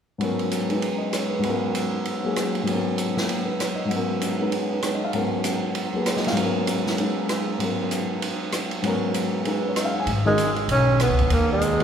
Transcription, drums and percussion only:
0.21 ride soft
0.39 ride soft
0.51 hi-hat pedal soft
0.51 ride soft
0.70 ride soft
0.82 ride soft
1.13 cross-stick soft
1.13 hi-hat pedal soft
1.13 ride soft
1.43 ride soft
1.75 hi-hat pedal soft
1.75 ride soft
2.05 ride soft
2.36 cross-stick soft
2.36 hi-hat pedal soft
2.36 ride soft
2.55 ride soft
2.67 ride soft
2.98 hi-hat pedal soft
2.98 ride soft
3.17 snare soft
3.29 ride soft
3.60 cross-stick soft
3.60 hi-hat pedal soft
3.60 ride soft
3.91 ride soft
4.21 hi-hat pedal soft
4.21 ride soft
4.52 ride soft
4.82 cross-stick soft
4.82 hi-hat pedal soft
4.82 ride soft
5.13 ride soft
5.44 hi-hat pedal soft
5.44 ride soft
5.75 ride soft
6.06 cross-stick soft
6.06 hi-hat pedal soft
6.06 ride soft
6.17 snare soft
6.24 snare soft
6.24 ride soft
6.37 ride soft
6.67 hi-hat pedal soft
6.67 ride soft
6.87 snare soft
6.98 ride soft
7.29 cross-stick soft
7.29 hi-hat pedal soft
7.29 ride soft
7.60 ride soft
7.91 hi-hat pedal soft
7.91 ride soft
8.22 ride soft
8.52 cross-stick soft
8.52 hi-hat pedal soft
8.52 ride soft
8.71 ride soft
8.84 ride soft
9.14 hi-hat pedal soft
9.14 ride soft
9.45 ride soft
9.76 cross-stick soft
9.76 hi-hat pedal soft
9.76 ride soft
10.07 ride soft
10.38 hi-hat pedal soft
10.38 ride soft
10.56 ride soft
10.69 ride soft
11.00 cross-stick soft
11.00 hi-hat pedal soft
11.00 ride soft
11.19 ride soft
11.30 ride soft
11.61 hi-hat pedal soft
11.61 ride soft
11.80 ride soft

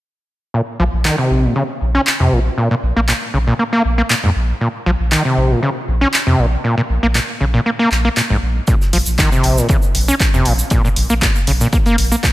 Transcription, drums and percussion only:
1.05 clap loud
2.07 clap loud
3.09 clap loud
4.10 clap loud
5.12 clap loud
6.14 clap loud
7.15 clap loud
7.92 clap medium
8.17 clap loud
8.67 kick loud
8.67 closed hi-hat medium
8.67 shaker medium
8.81 snare soft
8.81 shaker soft
8.93 closed hi-hat medium
8.93 open hi-hat loud
9.06 shaker medium
9.18 kick loud
9.18 snare loud
9.18 clap loud
9.18 closed hi-hat medium
9.18 shaker medium
9.32 shaker soft
9.43 closed hi-hat medium
9.43 open hi-hat medium
9.58 snare soft
9.58 shaker medium
9.69 kick loud
9.69 closed hi-hat medium
9.69 shaker medium
9.82 shaker soft
9.95 closed hi-hat medium
9.95 open hi-hat loud
10.09 shaker medium
10.20 kick loud
10.20 snare loud
10.20 clap loud
10.20 closed hi-hat medium
10.20 shaker medium
10.34 snare soft
10.34 shaker soft
10.45 closed hi-hat medium
10.45 open hi-hat medium
10.59 shaker medium
10.70 kick loud
10.70 closed hi-hat medium
10.70 shaker medium
10.85 shaker soft
10.96 closed hi-hat medium
10.96 open hi-hat loud
11.10 shaker medium
11.22 kick loud
11.22 snare loud
11.22 clap loud
11.22 closed hi-hat medium
11.22 shaker medium
11.35 shaker soft
11.47 closed hi-hat medium
11.47 open hi-hat medium
11.61 snare soft
11.61 shaker medium
11.73 kick loud
11.73 closed hi-hat medium
11.73 shaker medium
11.86 closed hi-hat soft
11.86 shaker soft
11.98 closed hi-hat medium
11.98 open hi-hat medium
12.12 shaker medium
12.23 kick loud
12.23 snare loud
12.23 clap loud
12.23 closed hi-hat medium
12.23 shaker medium

